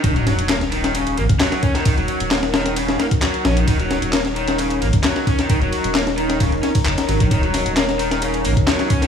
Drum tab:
RD |x-x-x-x-xxx-x-x-|x-xxx-x-x-x-x-x-|x-x-x-x-xxx-x-x-|x-xxx-x-x-xx-xx-|
HH |xx-xxx-xxx-xxx-x|xx-xxx-xxx-xxx-x|xx-xxx-xxx-xxx-x|xx-xxx-xxx-xxx-x|
CP |----x-------x---|----x-------x---|----x-------x---|----x-------x---|
SD |--o-oo-o----oo-o|----oooo-oo-o-o-|--o-oo-o----oo-o|----oo-o--o--o--|
BD |o----------o--o-|o----------o----|o----------o--o-|o-------o--o---o|

RD |x-x-x-x-xxx-x-x-|
HH |xxoxxxoxxxoxxxox|
CP |----x-------x---|
SD |--o-oo-o----oo-o|
BD |o----------o--o-|